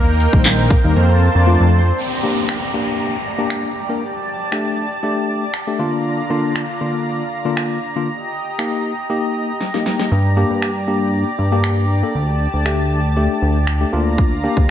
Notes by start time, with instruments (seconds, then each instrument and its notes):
Already playing: analog synth bass D#2, supersaw synth A#3 A#4, analog synth pad D#4 A#4 G5
0.20 closed hi-hat
0.33 analog synth bass A#1, tine electric piano D#3 G3 A#3 D#4, supersaw synth C4 C5, kick
0.45 snare, clap, closed hi-hat
0.59 supersaw synth A#3 A#4, closed hi-hat
0.70 kick, closed hi-hat
0.84 analog synth bass D#2, tine electric piano D#3 G3 A#3 D#4, supersaw synth A#3 A#4
0.96 analog synth bass F2, supersaw synth C4 C5, analog synth pad F4 C5 A5
1.35 analog synth bass F2, supersaw synth D4 D5
1.47 tine electric piano F3 A3 C4 F4
1.60 analog synth bass F2
1.72 supersaw synth C4 C5
1.98 analog synth pad G4 D5 A#5, downlifter
2.23 tine electric piano A#3 D4 G4
2.49 finger snap
2.74 tine electric piano A#3 D4 G4
3.38 tine electric piano A#3 D4 G4
3.50 finger snap
3.89 tine electric piano A#3 D4 A#4
4.01 analog synth pad A5
4.52 tine electric piano A3 D4 G4, finger snap
5.03 tine electric piano A3 D4 G4
5.54 finger snap
5.67 tine electric piano A3 D4 G4
5.79 tine electric piano D3 A#3 D4 F4, analog synth pad D3 F4 A#5
6.30 tine electric piano D3 A#3 D4 F4
6.56 finger snap
6.81 tine electric piano D3 A#3 D4 F4
7.45 tine electric piano D3 A#3 D4 F4
7.57 finger snap
7.96 tine electric piano D3 A#3 D4 F4
8.08 analog synth pad G4 D#5
8.59 tine electric piano A#3 D#4 G4, finger snap
9.10 tine electric piano A#3 D#4 G4
9.61 snare
9.74 tine electric piano A#3 D#4 G4, snare
9.86 snare
10.00 snare
10.11 analog synth bass G2, analog synth pad D5
10.37 tine electric piano A#3 D4 G4
10.50 analog synth bass G2
10.62 finger snap
10.87 tine electric piano A#3 D4 G4
11.39 analog synth bass G2
11.52 tine electric piano A#3 D4 G4
11.64 finger snap
12.03 tine electric piano A#3 D4 A4
12.15 analog synth bass D2, analog synth pad A5
12.54 analog synth bass D2
12.65 tine electric piano A3 D4 G4, finger snap
13.16 tine electric piano A3 D4 G4
13.42 analog synth bass D2
13.67 finger snap
13.81 tine electric piano A3 D4 G4
13.93 analog synth bass D2, tine electric piano A#3 D4 F4, analog synth pad F4 D5 A#5
14.18 kick
14.43 tine electric piano A#3 D4 G4
14.57 analog synth bass D2, kick